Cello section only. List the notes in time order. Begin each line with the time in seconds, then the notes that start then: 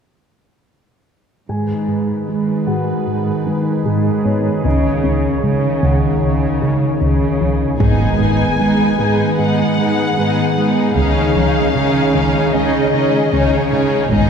1.49 G#2
2.28 G#2
3.07 G#2
3.86 G#2
4.64 C#3
5.44 C#3
6.22 C#3
7.01 C#3
7.81 G#2
8.59 G#2
9.38 G#2
10.17 G#2
10.96 C#3
11.75 C#3
12.54 C#3
13.33 C#3
14.12 G#2